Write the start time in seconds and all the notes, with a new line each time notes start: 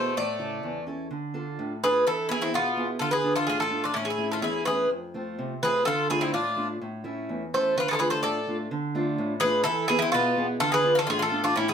Already playing: B2 A3 B3 E4 G#4 C5
0.16 A2 A3 D5
0.39 C#3 E4 A4
0.63 E2
0.87 C#4 E4 A4
1.11 D3
1.34 D4 F4 A4
1.59 A2
1.84 D4 F4 G#4 A4 B4
2.07 E3 E4 A4
2.29 B3 E4 G#4
2.42 C4 E4
2.53 B2 B3 F4
2.77 B3 E4 G#4
2.99 D3 F4 A4
3.11 G#4 B4
3.24 D4 F4 A4
3.36 F4 A4
3.47 A2 F4 G#4
3.60 F4 A4
3.71 D4 F4 A4
3.84 D4 F4
3.94 A2 C#4 E4
4.05 G#4
4.10 E4
4.18 A3 C#4 E4
4.32 F4 A4
4.41 E2 E4 G#4
4.65 A3 C#4 E4 G#4 B4
4.90 F2
5.14 A3 C4 F4
5.39 C3
5.62 A3 C4 F4 G#4 B4
5.85 D3 F4 A4
6.10 A3 D4 E4 F4 G#4
6.21 C4 E4
6.33 A2 D4 F4
6.56 A3 D4 F4
6.81 A2
7.04 A3 C#4 E4
7.29 E2
7.54 A3 C#4 E4 A4 C5
7.76 D3 F4 B4
7.88 F4 G#4 A4 B4
7.93 F4 A4
7.99 A3 D4 F4 G#4 B4
8.10 A4 C5
8.23 A2 A4 D5
8.47 A3 D4 F4
8.71 D3
8.95 A3 D4 F4
9.18 A2
9.40 A3 G#4 B4
9.44 D4 F4
9.64 E3 E4 A4
9.88 B3 E4 G#4
9.99 C4 E4
10.12 B2 B3 F4
10.36 B3 E4 G#4
10.60 D3 F4 A4
10.72 G#4 B4
10.84 D4 F4 A4
10.95 F4 A4
11.07 A2 F4 G#4
11.19 F4 A4
11.31 D4 F4 A4
11.44 D4 F4
11.56 A2 C#4 E4
11.68 E4 G#4